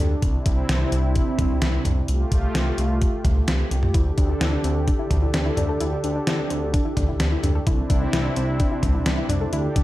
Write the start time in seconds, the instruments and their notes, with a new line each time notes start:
Already playing: analog synth pad D3 D4 G4 A4
0.00 analog synth bass D2
0.22 analog synth bass C2, analog synth pad C3 C4 E4, kick, closed hi-hat
0.46 analog synth bass C2, kick, closed hi-hat
0.69 analog synth bass C2, snare, closed hi-hat
0.92 analog synth bass C2, closed hi-hat
1.16 kick, closed hi-hat
1.39 analog synth bass C2, kick, closed hi-hat, mid tom
1.62 analog synth bass C2, snare, closed hi-hat
1.85 analog synth bass C2, closed hi-hat, mid tom
2.08 analog synth bass C2, analog synth pad A3 F4 G4, closed hi-hat
2.32 analog synth bass C2, kick, closed hi-hat
2.55 analog synth bass C2, snare, closed hi-hat
2.78 analog synth bass C2, closed hi-hat
3.02 kick, closed hi-hat
3.25 analog synth bass C2, kick, closed hi-hat, mid tom
3.48 analog synth bass C2, snare, closed hi-hat
3.71 analog synth bass C2, closed hi-hat
3.83 mid tom
3.94 analog synth bass D2, analog synth pad D3 D4 A4, synth pluck E4, kick, closed hi-hat
4.18 analog synth bass D2, synth pluck D4, kick, closed hi-hat
4.29 synth pluck D4
4.41 analog synth bass D2, synth pluck E4, snare, closed hi-hat
4.53 synth pluck D4
4.64 analog synth bass D2, synth pluck C4, closed hi-hat
4.87 synth pluck D4, kick, closed hi-hat
4.99 synth pluck E4
5.11 analog synth bass D2, synth pluck D4, kick, closed hi-hat, mid tom
5.22 synth pluck E4
5.34 analog synth bass D2, synth pluck D4, snare, closed hi-hat
5.46 synth pluck E4
5.57 analog synth bass D2, synth pluck D4, closed hi-hat, mid tom
5.69 synth pluck A4
5.80 analog synth bass D2, synth pluck E4, closed hi-hat
6.03 analog synth bass D2, synth pluck D4, closed hi-hat
6.15 synth pluck D4
6.27 analog synth bass D2, synth pluck E4, snare, closed hi-hat
6.39 synth pluck D4
6.50 analog synth bass D2, synth pluck C4, closed hi-hat
6.73 synth pluck D4, kick, closed hi-hat
6.85 synth pluck E4
6.97 analog synth bass D2, synth pluck D4, kick, closed hi-hat, mid tom
7.08 synth pluck E4
7.20 analog synth bass D2, synth pluck D4, snare, closed hi-hat
7.32 synth pluck E4
7.43 analog synth bass D2, synth pluck D4, closed hi-hat, mid tom
7.55 synth pluck A4
7.67 analog synth bass C2, analog synth pad C3 C4 D4 E4, synth pluck E4, kick, closed hi-hat
7.90 analog synth bass C2, synth pluck D4, kick, closed hi-hat
8.02 synth pluck D4
8.13 analog synth bass C2, synth pluck E4, snare, closed hi-hat
8.25 synth pluck D4
8.36 analog synth bass C2, synth pluck C4, closed hi-hat
8.60 synth pluck D4, kick, closed hi-hat
8.71 synth pluck E4
8.83 analog synth bass C2, synth pluck D4, kick, closed hi-hat, mid tom
8.94 synth pluck E4
9.06 analog synth bass C2, synth pluck D4, snare, closed hi-hat
9.18 synth pluck E4
9.29 analog synth bass C2, synth pluck D4, closed hi-hat, mid tom
9.41 synth pluck A4
9.52 analog synth bass D2, analog synth pad D3 G4 A4, synth pluck E4, closed hi-hat
9.76 analog synth bass D2, synth pluck D4, kick, closed hi-hat